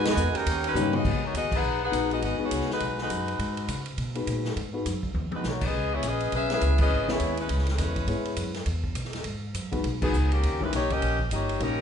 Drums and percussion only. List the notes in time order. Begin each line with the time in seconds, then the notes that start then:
0.05 snare, ride
0.17 hi-hat pedal
0.35 ride
0.46 kick, ride
0.64 ride
0.76 hi-hat pedal, mid tom
0.93 mid tom
1.05 kick, crash
1.34 kick, hi-hat pedal, ride
1.52 kick, crash
1.93 kick, hi-hat pedal, ride
2.11 ride
2.22 kick, ride
2.51 kick, hi-hat pedal, ride
2.61 snare
2.71 snare
2.80 kick, ride
2.98 snare
3.10 kick, hi-hat pedal, ride
3.28 ride
3.39 kick, ride
3.57 ride
3.68 kick, hi-hat pedal, ride
3.86 ride
3.98 kick, ride
4.15 ride
4.27 kick, hi-hat pedal, ride
4.45 snare
4.56 kick, ride
4.86 kick, hi-hat pedal, ride
5.03 kick
5.14 high tom
5.32 high tom
5.44 snare, hi-hat pedal
5.61 kick, crash
5.73 kick
6.03 kick, hi-hat pedal, ride
6.20 ride
6.32 kick, ride
6.50 snare, ride
6.61 kick, hi-hat pedal, ride
6.78 kick, crash
7.08 snare
7.20 kick, hi-hat pedal, ride
7.37 ride
7.49 kick, ride
7.58 snare
7.67 snare, ride
7.78 kick, snare, hi-hat pedal, ride
7.96 kick, ride
8.08 kick, ride
8.25 ride
8.37 kick, hi-hat pedal, ride
8.54 snare, ride
8.66 kick, ride
8.84 kick
8.95 kick, hi-hat pedal, ride
9.05 snare
9.13 snare, ride
9.24 kick, ride
9.55 kick, hi-hat pedal, ride
9.72 kick, ride
9.84 kick, ride
10.02 kick, crash
10.14 hi-hat pedal
10.32 ride
10.43 kick, ride
10.61 kick
10.73 kick, hi-hat pedal, ride
10.90 kick, ride
11.02 kick, ride
11.19 kick
11.31 kick, hi-hat pedal, ride
11.49 ride
11.60 kick, ride